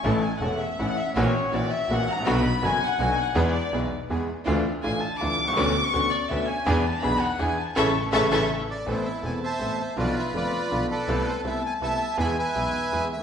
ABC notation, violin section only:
X:1
M:3/4
L:1/16
Q:1/4=163
K:A
V:1 name="Violin section"
a2 g2 f2 e2 f2 e2 | c4 d2 e2 f2 ^a2 | b4 g2 f2 g2 f2 | d6 z6 |
z4 g2 a2 d'3 c' | d'3 c'3 d2 e2 g2- | g2 a2 b2 f2 g2 a2 | [eac']2 z2 [eac']2 [eac']2 z4 |
[K:Am] a12 | b12 | a12 | ^g8- g2 z2 |]